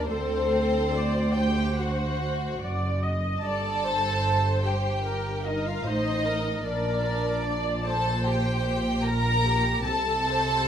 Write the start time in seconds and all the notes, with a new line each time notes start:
0.08 D2 C4 A4 C5
0.95 D5
1.37 G4 C5 G5
1.80 F#4 F#5
2.62 F#1 F#2 D5
3.02 D#5
3.42 G1 G2 A4 D5 A5
3.84 C5
4.65 G4 G5
5.06 A#4
5.47 D#4 D#5
5.66 F4 F5
5.85 A1 A2 D#4 C5 D#5
6.26 A#4
6.65 A#1 A#2 D4 A#4 D5
7.46 D5
7.86 A4 C5 A5
8.26 G4 G5
9.04 A#4 A#5
9.08 A#4
9.47 G4
9.86 C2 C3 A4 A5
10.28 C5